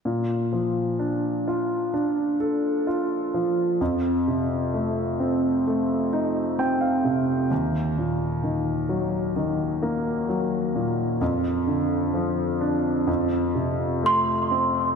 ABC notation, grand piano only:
X:1
M:4/4
L:1/16
Q:1/4=64
K:Bb
V:1 name="Grand piano"
z16 | z12 g f3 | z16 | z16 |]
V:2 name="Grand piano" clef=bass
B,,2 F,2 D2 F2 D2 A2 F2 F,2 | F,,2 C,2 A,2 C2 A,2 E2 C2 C,2 | E,,2 B,,2 E,2 _G,2 E,2 B,2 G,2 B,,2 | F,,2 D,2 F,2 D2 F,,2 C,2 A,2 C2 |]